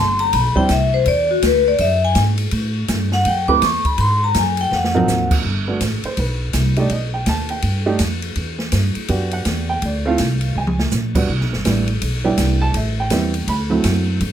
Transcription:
Already playing: G1 C6
0.19 A#5, ride
0.33 B1 B5, kick, ride
0.56 G3 C4 D4 E4 C5 G5, muted upright bass stroke, kick
0.69 C2 E5, snare, hi-hat pedal, ride
0.94 C5
1.06 E2 D5, kick, ride
1.31 F#4
1.42 D2 B4, kick, snare, hi-hat pedal, ride
1.68 D5
1.78 F#2 E5, kick, ride
2.05 G#5
2.15 G#2, kick, snare, hi-hat pedal, ride
2.38 ride
2.51 A2, kick, ride
2.88 G2, kick, snare, hi-hat pedal, ride
3.12 F#5, snare
3.25 F#2 G5, kick, ride
3.48 A3 C4 E4 G4 B4 D6, kick
3.62 E2 C#6, kick, snare, hi-hat pedal, ride
3.85 B5, muted upright bass stroke, kick, ride
3.98 G#2 C6, kick, ride
4.24 A#5
4.34 F#2, kick, snare, hi-hat pedal, ride
4.38 G#5
4.57 G5, ride
4.71 F2 F#5, snare
4.84 snare
4.94 F3 F#3 C4 D#4 A#4, floor tom
5.08 D#2, snare, hi-hat pedal
5.31 kick, crash
5.45 G1, kick
5.68 A3 B3 D4 F#4
5.81 A1, kick, snare, hi-hat pedal, ride
6.04 C5, muted upright bass stroke, ride
6.17 B1 B4, kick, ride
6.53 C2, kick, snare, hi-hat pedal, ride
6.76 A3 D4 D#4 G4 D5, ride
6.89 B1 D#5, kick, ride
7.14 G5
7.26 D#2 A5, kick, snare, hi-hat pedal, ride
7.49 G5, ride
7.62 G2, kick, ride
7.86 A3 D4 D#4 G4
7.99 F2, kick, snare, hi-hat pedal, ride
8.22 ride
8.36 E2, kick, ride
8.59 snare
8.72 G2, kick, snare, hi-hat pedal, ride
8.95 muted upright bass stroke, ride
9.08 F#2 B3 D4 F#4 G4, kick, ride
9.31 F#5, ride
9.45 E2, kick, snare, hi-hat pedal, ride
9.69 G5
9.82 D2 D5, kick, ride
10.05 A3 C4 E4 F4 F5
10.18 C2, kick, snare, hi-hat pedal, ride
10.41 ride
10.55 C#2 G#5
10.67 mid tom
10.79 snare
10.91 A#1, snare, hi-hat pedal
11.15 G3 B3 D4 F#4, kick, crash
11.28 C2
11.41 B1, snare
11.53 G1, snare
11.65 A1 G3 B3 D4 E4, kick, snare, hi-hat pedal, ride
11.88 ride
12.02 B1, kick, ride
12.24 G3 B3 D4 E4 G5
12.38 C2, kick, snare, hi-hat pedal, ride
12.62 A5
12.74 A1 E5, kick, ride
13.00 G5
13.10 E2 G3 B3 C4 E4, kick, snare, hi-hat pedal, ride
13.34 ride
13.47 D2 B5, kick, ride
13.70 F#3 A3 C4 E4
13.84 F#2, kick, snare, hi-hat pedal, ride
14.20 G2, kick, ride

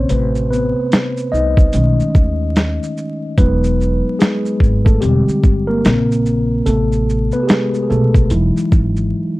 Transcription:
Already playing: C#3 A#3 C4 C#4 C5 C#5
0.09 A1 C3 A3 B4, closed hi-hat, shaker
0.35 shaker
0.51 B3 B4, shaker
0.92 snare, closed hi-hat, shaker
1.17 shaker
1.32 C2 D#4 D#5, shaker
1.57 kick, shaker
1.73 B1 D#3 G#3 A3 C#4, closed hi-hat, shaker
2.00 muted upright bass stroke, shaker
2.15 D#2, kick, shaker
2.56 snare, closed hi-hat, shaker
2.83 shaker
2.97 shaker
3.38 E1 F#3 G#3 B3 D#4 B4, kick, closed hi-hat, shaker
3.64 shaker
3.81 shaker
4.19 G#3 G#4, snare, closed hi-hat, shaker
4.46 shaker
4.60 G#1, kick, shaker
4.85 A3 A4, kick, shaker
5.01 E1 D3 G3 G#3 C4 G4, closed hi-hat, shaker
5.28 muted upright bass stroke, shaker
5.44 G1, kick, shaker
5.67 A#3 A#4
5.84 A#1 C#3 A#3 C4, snare, closed hi-hat, shaker
6.12 shaker
6.26 shaker
6.66 A1 C3 A3 B3 A4, closed hi-hat, shaker
6.92 shaker
7.10 shaker
7.32 B3 B4, shaker
7.43 G4
7.48 G#3 G#4, snare, closed hi-hat, shaker
7.74 shaker
7.83 G#4
7.90 B1 A3 A4, shaker
8.14 kick, shaker
8.30 E1 E3 F#3 G#3 D#4 E4, closed hi-hat, shaker
8.56 muted upright bass stroke, shaker
8.72 G#1, kick, shaker
8.97 shaker

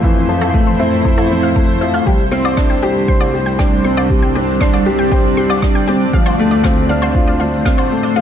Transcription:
Already playing: F2 F3 A3 C4 E4 C5
0.03 E3 E4, kick, shaker
0.29 F3 A4, shaker
0.41 A4, low woodblock, shaker
0.54 A3, kick, shaker
0.67 C5
0.80 C4 E4, shaker
0.92 shaker
1.05 E4 A4, kick, shaker
1.18 A4, low woodblock
1.30 C4, shaker
1.43 F5, shaker
1.56 A3 A4, kick, shaker
1.81 F3 E5, shaker
1.94 F5, low woodblock, shaker
2.06 C2 G3 C4 D4 G4, kick, shaker
2.32 C4 C6, shaker
2.45 D5, low woodblock, shaker
2.57 D4, kick, cross-stick, shaker
2.70 G5
2.82 G4, shaker
2.96 shaker
3.08 C5 C6, kick, shaker
3.20 D5, low woodblock
3.33 G4, shaker
3.46 G5, shaker
3.59 D4 G4, kick, cross-stick, shaker
3.84 C4 C6, shaker
3.97 D5, low woodblock, shaker
4.10 G3 D5, kick, shaker
4.22 G5
4.35 C4 G4, shaker
4.49 shaker
4.61 D4 C6, kick, cross-stick, shaker
4.74 D5, low woodblock
4.86 G4, shaker
4.99 G5, shaker
5.12 G4 C5, kick, shaker
5.37 G4 C6, shaker
5.50 D5, low woodblock, shaker
5.62 D4, kick, cross-stick, shaker
5.75 G5
5.88 C4 G4, shaker
6.01 shaker
6.13 D2 F3 A3 D4 F4 C5 F5, kick, shaker
6.26 C5, low woodblock
6.39 A3, shaker
6.51 D5, shaker
6.63 C4 F4, kick, cross-stick, shaker
6.88 D4 F5, shaker
7.02 C5, low woodblock, shaker
7.14 F4, kick, shaker
7.28 D5
7.40 D4 F4, shaker
7.53 shaker
7.65 C4 F5, kick, cross-stick, shaker
7.78 C5, low woodblock
7.91 A3, shaker
8.03 D5, shaker
8.16 F3 F4, shaker

